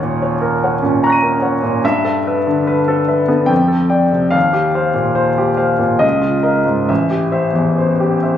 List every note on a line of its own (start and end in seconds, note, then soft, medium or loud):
0.00 1.79 D#2 soft
0.00 0.34 A#2 soft
0.00 0.42 A#4 soft
0.00 0.22 C#5 soft
0.00 0.64 F#5 soft
0.22 0.54 C#5 soft
0.42 0.74 A#4 soft
0.64 0.81 C#5 soft
0.64 0.81 F#5 soft
0.83 1.15 A#2 soft
0.83 1.15 C#4 soft
1.04 1.35 A#5 medium
1.04 1.80 C#6 soft
1.04 1.81 F#6 soft
1.10 1.83 A#6 soft
1.10 1.84 D#7 soft
1.23 1.55 C#4 soft
1.23 1.55 A#4 soft
1.42 1.60 C#5 soft
1.42 1.61 F#5 soft
1.62 1.83 A#2 soft
1.62 1.83 C#4 soft
1.84 3.47 G2 medium
1.84 2.17 E5 medium
2.05 2.38 A4 soft
2.27 2.45 B4 soft
2.27 2.45 E5 soft
2.47 2.80 D3 soft
2.67 3.00 B4 soft
2.88 3.21 A4 soft
3.08 3.27 B4 soft
3.08 3.27 E5 soft
3.28 3.50 D3 soft
3.28 3.50 B3 soft
3.46 4.31 F2 soft
3.46 3.82 G5 medium
3.68 4.04 A4 soft
3.90 4.10 D5 soft
3.90 4.10 G5 soft
4.12 4.34 C3 soft
4.31 5.97 D#2 soft
4.31 4.66 F5 medium
4.53 4.88 G4 soft
4.75 4.94 C5 soft
4.75 4.95 F5 soft
4.94 5.29 A#2 soft
5.15 5.50 C5 soft
5.38 5.72 G4 soft
5.57 5.78 C5 soft
5.57 5.78 F5 soft
5.79 6.02 A#2 soft
5.99 6.86 C#2 soft
5.99 6.36 D#5 medium
6.22 6.58 F4 soft
6.43 6.64 A#4 soft
6.43 6.64 D#5 soft
6.65 6.88 G#2 soft
6.89 8.38 A1 soft
6.89 7.24 E5 soft
7.10 7.46 G4 soft
7.31 7.52 C5 soft
7.31 7.53 E5 soft
7.53 7.90 E2 soft
7.78 8.14 C5 soft
8.00 8.37 G4 soft
8.23 8.38 C5 soft
8.23 8.38 E5 soft